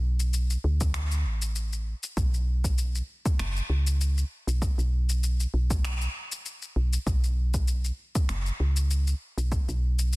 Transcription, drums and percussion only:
0.20 shaker medium
0.34 shaker medium
0.50 shaker soft
0.81 kick loud
0.81 shaker medium
0.94 finger snap medium
0.94 shaker medium
1.11 shaker soft
1.42 shaker medium
1.56 shaker medium
1.73 shaker soft
2.03 shaker medium
2.17 kick loud
2.17 shaker medium
2.34 shaker soft
2.64 kick medium
2.64 shaker medium
2.78 shaker medium
2.95 shaker soft
3.26 kick loud
3.26 shaker medium
3.39 finger snap medium
3.39 shaker medium
3.57 shaker soft
3.87 shaker medium
4.01 shaker medium
4.18 shaker soft
4.48 shaker medium
4.62 kick loud
4.62 shaker medium
4.79 shaker soft
5.09 shaker medium
5.23 shaker medium
5.40 shaker soft
5.70 kick loud
5.70 shaker medium
5.85 finger snap medium
5.85 shaker medium
6.01 shaker soft
6.32 shaker medium
6.46 shaker medium
6.62 shaker soft
6.93 shaker medium
7.07 kick loud
7.07 shaker soft
7.24 shaker soft
7.54 kick medium
7.54 shaker medium
7.68 shaker medium
7.84 shaker soft
8.15 kick loud
8.15 shaker medium
8.29 finger snap medium
8.29 shaker medium
8.46 shaker soft
8.77 shaker medium
8.91 shaker medium
9.07 shaker soft
9.38 shaker medium
9.52 kick loud
9.52 shaker medium
9.69 shaker soft
9.99 shaker medium
10.13 shaker medium

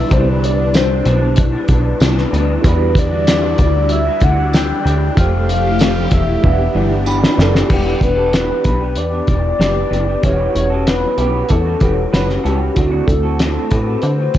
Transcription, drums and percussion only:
0.11 kick loud
0.11 closed hi-hat medium
0.44 closed hi-hat medium
0.74 snare loud
0.74 closed hi-hat medium
0.74 tambourine medium
1.05 closed hi-hat medium
1.36 kick medium
1.36 closed hi-hat medium
1.68 kick medium
1.68 closed hi-hat medium
2.00 snare loud
2.00 closed hi-hat loud
2.00 tambourine medium
2.18 snare soft
2.34 closed hi-hat medium
2.64 kick loud
2.64 closed hi-hat medium
2.95 kick medium
2.95 closed hi-hat medium
3.27 snare loud
3.27 closed hi-hat loud
3.27 tambourine medium
3.58 kick medium
3.58 closed hi-hat medium
3.89 closed hi-hat medium
4.20 kick medium
4.20 closed hi-hat medium
4.53 snare loud
4.53 closed hi-hat medium
4.53 tambourine medium
4.87 closed hi-hat medium
5.17 kick loud
5.17 closed hi-hat medium
5.49 closed hi-hat medium
5.79 snare loud
5.79 closed hi-hat loud
5.79 tambourine medium
6.11 kick medium
6.11 closed hi-hat medium
6.44 kick medium
7.06 tambourine medium
7.24 snare medium
7.39 snare loud
7.55 snare medium
7.70 kick loud
7.70 crash medium
8.01 kick medium
8.01 closed hi-hat medium
8.33 snare loud
8.33 closed hi-hat medium
8.64 kick medium
8.64 closed hi-hat medium
8.96 closed hi-hat medium
9.27 kick medium
9.27 closed hi-hat medium
9.61 snare loud
9.61 closed hi-hat medium
9.93 closed hi-hat medium
10.23 kick medium
10.23 closed hi-hat medium
10.56 closed hi-hat medium
10.87 snare loud
10.87 closed hi-hat loud
11.18 closed hi-hat medium
11.49 kick medium
11.49 closed hi-hat medium
11.80 kick medium
11.80 closed hi-hat medium
12.14 snare loud
12.14 closed hi-hat medium
12.30 snare soft
12.46 closed hi-hat medium
12.76 kick loud
12.76 closed hi-hat medium
13.08 kick medium
13.08 closed hi-hat medium
13.39 snare loud
13.39 closed hi-hat loud
13.71 kick medium
13.71 closed hi-hat medium
14.02 closed hi-hat medium
14.34 kick medium
14.34 closed hi-hat medium

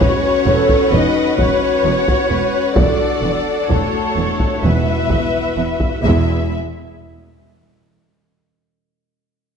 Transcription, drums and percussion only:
0.01 taiko medium
0.69 taiko medium
1.39 taiko medium
2.08 taiko medium
2.76 taiko medium
3.70 taiko medium
4.40 taiko medium
5.10 taiko medium
5.80 taiko medium
6.04 taiko soft

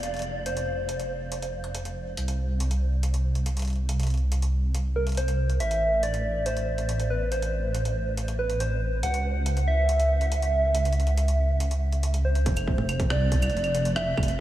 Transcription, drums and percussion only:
0.03 closed hi-hat medium
0.14 closed hi-hat soft
0.17 closed hi-hat soft
0.19 closed hi-hat soft
0.22 closed hi-hat soft
0.46 closed hi-hat medium
0.57 closed hi-hat soft
0.89 closed hi-hat medium
1.00 closed hi-hat soft
1.32 closed hi-hat medium
1.42 closed hi-hat soft
1.64 closed hi-hat soft
1.75 closed hi-hat medium
1.85 closed hi-hat soft
2.17 closed hi-hat medium
2.28 closed hi-hat soft
2.60 closed hi-hat medium
2.71 closed hi-hat soft
3.03 closed hi-hat medium
3.14 closed hi-hat soft
3.35 closed hi-hat soft
3.46 closed hi-hat medium
3.57 closed hi-hat soft
3.59 closed hi-hat soft
3.62 closed hi-hat soft
3.65 closed hi-hat soft
3.67 closed hi-hat soft
3.70 closed hi-hat soft
3.73 closed hi-hat soft
3.76 closed hi-hat soft
3.89 closed hi-hat medium
4.00 closed hi-hat soft
4.03 closed hi-hat soft
4.07 closed hi-hat soft
4.10 closed hi-hat soft
4.14 closed hi-hat soft
4.17 closed hi-hat soft
4.32 closed hi-hat medium
4.42 closed hi-hat soft
4.74 closed hi-hat medium
5.07 closed hi-hat soft
5.09 closed hi-hat soft
5.12 closed hi-hat soft
5.15 closed hi-hat soft
5.17 closed hi-hat medium
5.28 closed hi-hat soft
5.50 closed hi-hat soft
5.60 closed hi-hat medium
5.71 closed hi-hat soft
6.03 closed hi-hat medium
6.14 closed hi-hat soft
6.46 closed hi-hat medium
6.57 closed hi-hat soft
6.78 closed hi-hat soft
6.89 closed hi-hat medium
7.00 closed hi-hat soft
7.32 closed hi-hat medium
7.42 closed hi-hat soft
7.75 closed hi-hat medium
7.85 closed hi-hat soft
8.17 closed hi-hat medium
8.28 closed hi-hat soft
8.50 closed hi-hat soft
8.60 closed hi-hat medium
9.03 closed hi-hat medium
9.14 closed hi-hat soft
9.46 closed hi-hat medium
9.57 closed hi-hat soft
9.89 closed hi-hat medium
10.00 closed hi-hat soft
10.21 closed hi-hat soft
10.32 closed hi-hat medium
10.42 closed hi-hat soft
10.75 closed hi-hat medium
10.85 closed hi-hat soft
10.93 closed hi-hat soft
11.00 closed hi-hat soft
11.07 closed hi-hat soft
11.17 closed hi-hat medium
11.28 closed hi-hat soft
11.60 closed hi-hat medium
11.71 closed hi-hat soft
11.92 closed hi-hat soft
12.03 closed hi-hat medium
12.14 closed hi-hat soft
12.35 closed hi-hat soft
12.46 kick loud
12.46 closed hi-hat medium
12.57 closed hi-hat medium
12.57 claves medium
12.57 shaker medium
12.67 kick loud
12.78 mid tom medium
12.89 closed hi-hat medium
12.89 claves medium
13.00 kick loud
13.00 closed hi-hat medium
13.10 cross-stick loud
13.10 claves medium
13.32 kick medium
13.32 closed hi-hat medium
13.42 closed hi-hat soft
13.42 claves medium
13.42 shaker medium
13.50 closed hi-hat soft
13.57 closed hi-hat soft
13.64 closed hi-hat soft
13.64 claves medium
13.75 closed hi-hat medium
13.85 closed hi-hat medium
13.96 cross-stick loud
13.96 claves medium
14.17 kick loud
14.17 claves medium
14.23 closed hi-hat medium
14.28 closed hi-hat medium

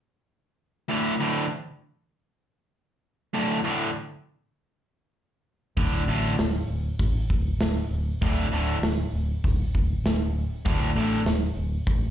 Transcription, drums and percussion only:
5.77 kick loud
5.77 open hi-hat soft
6.39 snare loud
6.39 open hi-hat medium
6.99 kick loud
6.99 open hi-hat medium
7.30 kick medium
7.60 snare loud
7.60 open hi-hat medium
8.22 kick loud
8.22 open hi-hat medium
8.83 snare loud
8.83 open hi-hat medium
9.44 kick loud
9.44 open hi-hat medium
9.75 kick medium
10.05 snare loud
10.05 open hi-hat medium
10.66 kick loud
10.66 open hi-hat soft
11.26 snare loud
11.26 open hi-hat medium
11.87 kick loud
11.87 open hi-hat medium

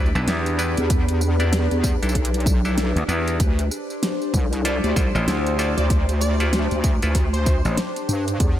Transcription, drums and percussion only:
0.06 tambourine soft
0.15 tambourine soft
0.28 snare loud
0.28 closed hi-hat medium
0.28 tambourine soft
0.46 closed hi-hat soft
0.46 tambourine soft
0.59 tambourine medium
0.77 closed hi-hat medium
0.77 tambourine soft
0.90 kick loud
0.90 closed hi-hat medium
0.90 tambourine soft
1.09 closed hi-hat medium
1.09 tambourine soft
1.21 cross-stick medium
1.21 tambourine medium
1.40 closed hi-hat soft
1.40 tambourine soft
1.53 snare loud
1.53 closed hi-hat medium
1.53 tambourine soft
1.71 closed hi-hat soft
1.71 tambourine soft
1.84 kick loud
1.84 tambourine medium
2.03 closed hi-hat soft
2.03 tambourine soft
2.09 tambourine soft
2.15 kick medium
2.15 closed hi-hat medium
2.25 closed hi-hat medium
2.34 closed hi-hat medium
2.34 tambourine soft
2.40 closed hi-hat soft
2.46 kick loud
2.46 tambourine medium
2.65 tambourine soft
2.78 snare loud
2.78 closed hi-hat medium
2.78 tambourine soft
2.97 closed hi-hat soft
2.97 tambourine soft
3.09 tambourine medium
3.28 closed hi-hat medium
3.28 tambourine soft
3.40 kick loud
3.40 closed hi-hat medium
3.40 tambourine soft
3.59 cross-stick soft
3.59 closed hi-hat medium
3.59 tambourine soft
3.71 cross-stick soft
3.71 tambourine medium
3.90 tambourine soft
4.03 snare loud
4.03 closed hi-hat medium
4.03 tambourine soft
4.22 tambourine soft
4.34 kick loud
4.34 tambourine medium
4.39 cross-stick soft
4.43 cross-stick soft
4.48 cross-stick soft
4.53 cross-stick soft
4.53 closed hi-hat soft
4.53 tambourine soft
4.56 cross-stick soft
4.59 cross-stick soft
4.62 cross-stick soft
4.62 closed hi-hat medium
4.62 tambourine soft
4.84 closed hi-hat soft
4.84 tambourine soft
4.96 kick loud
4.96 tambourine medium
5.15 tambourine soft
5.28 snare loud
5.28 closed hi-hat medium
5.28 tambourine soft
5.47 closed hi-hat soft
5.47 tambourine soft
5.59 tambourine medium
5.78 closed hi-hat medium
5.78 tambourine soft
5.90 kick loud
5.90 closed hi-hat medium
5.90 tambourine soft
6.09 cross-stick soft
6.09 closed hi-hat medium
6.09 tambourine soft
6.21 cross-stick medium
6.21 tambourine medium
6.40 closed hi-hat soft
6.40 tambourine soft
6.53 snare loud
6.53 closed hi-hat medium
6.53 tambourine soft
6.71 closed hi-hat soft
6.71 tambourine soft
6.84 kick loud
6.84 cross-stick soft
6.84 tambourine medium
7.02 closed hi-hat soft
7.02 tambourine soft
7.15 kick medium
7.15 closed hi-hat medium
7.15 tambourine soft
7.34 closed hi-hat soft
7.34 tambourine soft
7.46 kick loud
7.46 tambourine medium
7.65 tambourine soft
7.78 snare loud
7.78 closed hi-hat medium
7.78 tambourine soft
7.96 closed hi-hat soft
7.96 tambourine soft
8.09 tambourine medium
8.28 closed hi-hat medium
8.28 tambourine soft
8.40 kick loud
8.40 closed hi-hat medium
8.40 tambourine soft

